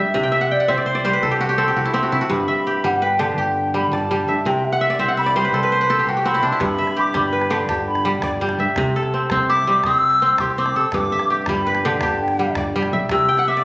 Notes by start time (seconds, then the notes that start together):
Already playing: G2 D3 G3 G4 D5 E5
0.14 C2 C3
0.23 G5
0.32 E5
0.41 F#5
0.51 D5 G5
0.60 F#5
0.68 C2 C4 C5 E5
0.78 D5
0.86 C5
0.95 D5
1.05 G3 C5
1.13 B4
1.23 C2 A4
1.31 G4
1.41 F#4
1.49 G4
1.58 C4 A4
1.68 G4
1.76 C2 F#4
1.85 E4
1.93 C4 G4 A5
2.03 F#4
2.12 C3 E4
2.21 F#4
2.30 G1 G2 B5
2.48 E5
2.67 G4
2.84 G1 G3 F#5
3.02 B4 G5
3.19 D3 G4 A5
3.38 G1 G4 G5
3.74 G3 B5
3.92 G1 D5 A5
4.11 G3
4.28 G2 E5
4.45 C2 C3 G5
4.65 E5
4.72 F#5
4.81 E5
4.90 D5
4.99 C2 C4 E5
5.08 F#5
5.17 E5 B5
5.26 D5
5.36 G3 C5
5.45 B4
5.53 C2 A4 C6
5.63 B4
5.72 C5
5.81 B4
5.90 C4 A4
5.99 G4
6.07 C2 F#4 G5
6.17 G4
6.25 C4 F#4 B5
6.34 E4
6.42 C3 D4 C6
6.52 E4
6.60 G1 G2 B5, calabash thump, calabash click
6.78 E5
6.87 calabash click
6.96 G4 D6
7.14 G1 G3 B5, calabash thump, calabash click
7.33 B4
7.41 calabash click
7.50 D3 G4
7.69 G1 G4 A5, calabash thump, calabash click
7.88 B5
7.95 calabash click
8.05 G3
8.22 G1 D5, calabash thump, calabash click
8.41 G3
8.49 calabash click
8.59 G2 E5
8.76 C2 C3, calabash thump, calabash click
8.96 A4
9.03 calabash click
9.14 C4
9.30 C2 C4, calabash thump, calabash click
9.49 E4 D6
9.57 calabash click
9.67 G3 C4
9.84 C2 C4 E6, calabash thump, calabash click
10.11 calabash click
10.22 C4
10.38 C2 G4 C6, calabash thump, calabash click
10.58 C4 D6
10.66 calabash click
10.76 C3 A4 E6
10.92 G1 G2 D6, calabash thump, calabash click
11.12 E5
11.19 calabash click
11.30 G4 D6
11.46 G1 G3 B5, calabash thump, calabash click
11.67 B4
11.75 calabash click
11.85 D3 G4
12.01 G1 G4 A5, calabash thump, calabash click
12.21 G5
12.28 calabash click
12.39 G3
12.55 G1 D5, calabash thump, calabash click
12.76 G3
12.83 calabash click
12.93 B1 E5
13.09 C2 C3 E6, calabash thump, calabash click
13.19 calabash click
13.29 G5
13.37 F#5, calabash click
13.48 E5 D6
13.57 D5